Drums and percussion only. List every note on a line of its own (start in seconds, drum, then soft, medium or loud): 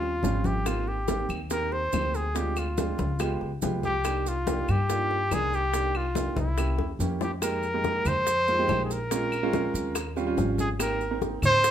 0.02 high bongo soft
0.02 high conga soft
0.23 high bongo soft
0.23 low bongo medium
0.23 high conga medium
0.23 maracas medium
0.44 high bongo soft
0.44 high conga medium
0.44 maracas soft
0.66 high bongo medium
0.66 high conga soft
0.66 claves medium
0.66 maracas medium
0.87 high bongo soft
0.87 high conga soft
1.08 high bongo medium
1.08 high conga medium
1.08 maracas medium
1.29 high conga soft
1.29 claves medium
1.29 maracas soft
1.50 high bongo medium
1.50 high conga soft
1.50 maracas medium
1.72 high bongo soft
1.72 high conga soft
1.93 high bongo soft
1.93 low bongo medium
1.93 high conga medium
1.93 claves medium
1.93 maracas medium
2.14 high bongo soft
2.14 high conga soft
2.14 maracas soft
2.35 high bongo medium
2.35 high conga soft
2.35 maracas medium
2.56 high bongo soft
2.56 high conga soft
2.56 claves medium
2.56 maracas medium
2.78 high bongo medium
2.78 high conga medium
2.78 maracas medium
2.99 high conga medium
2.99 maracas soft
3.19 high bongo medium
3.19 high conga soft
3.19 claves medium
3.19 maracas medium
3.41 high bongo soft
3.41 high conga soft
3.62 high bongo soft
3.62 low bongo medium
3.62 high conga medium
3.62 maracas medium
3.83 high bongo soft
3.83 high conga medium
3.83 maracas soft
4.04 high bongo medium
4.04 high conga soft
4.04 claves medium
4.04 maracas medium
4.26 high bongo soft
4.26 high conga soft
4.26 maracas medium
4.47 high bongo medium
4.47 high conga medium
4.47 maracas medium
4.68 high conga soft
4.68 claves medium
4.68 maracas soft
4.90 high bongo medium
4.90 high conga soft
4.90 maracas medium
5.11 high bongo soft
5.11 high conga soft
5.31 high bongo soft
5.31 low bongo medium
5.31 high conga medium
5.31 claves medium
5.31 maracas medium
5.53 high bongo soft
5.53 high conga soft
5.53 maracas soft
5.74 high bongo medium
5.74 high conga soft
5.74 maracas medium
5.95 high bongo soft
5.95 high conga soft
5.95 claves medium
6.15 high bongo medium
6.15 high conga medium
6.15 maracas medium
6.37 high conga medium
6.37 maracas soft
6.58 high bongo medium
6.58 high conga soft
6.58 claves medium
6.58 maracas medium
6.79 high bongo medium
6.79 high conga soft
7.00 high conga medium
7.00 maracas medium
7.21 low bongo loud
7.21 maracas soft
7.42 high bongo medium
7.42 high conga soft
7.42 claves medium
7.42 maracas medium
7.63 high bongo soft
7.63 high conga soft
7.63 maracas soft
7.84 high bongo medium
7.84 high conga medium
7.84 maracas soft
8.05 high conga soft
8.05 low conga medium
8.05 claves medium
8.05 maracas medium
8.26 high bongo medium
8.26 high conga soft
8.26 maracas medium
8.48 high bongo soft
8.48 high conga soft
8.48 maracas soft
8.68 high bongo soft
8.68 low bongo medium
8.68 high conga medium
8.68 claves medium
8.68 maracas soft
8.90 high bongo soft
8.90 high conga soft
8.90 maracas medium
9.11 high bongo medium
9.11 high conga soft
9.11 maracas medium
9.32 high bongo soft
9.32 high conga soft
9.32 claves medium
9.32 maracas soft
9.53 high bongo medium
9.53 high conga medium
9.53 maracas soft
9.75 high conga soft
9.75 maracas medium
9.95 high bongo medium
9.95 high conga soft
9.95 claves medium
9.95 maracas medium
10.16 high bongo soft
10.16 high conga soft
10.16 maracas soft
10.38 high bongo soft
10.38 low bongo medium
10.38 high conga medium
10.38 maracas soft
10.58 high bongo soft
10.58 high conga medium
10.58 maracas medium
10.80 high bongo medium
10.80 high conga soft
10.80 claves medium
10.80 maracas medium
11.00 high bongo soft
11.00 high conga soft
11.00 maracas soft
11.21 high bongo medium
11.21 high conga medium
11.21 maracas soft
11.42 high conga soft
11.42 low conga medium
11.42 claves medium
11.42 maracas medium
11.64 high bongo medium
11.64 high conga soft
11.64 maracas medium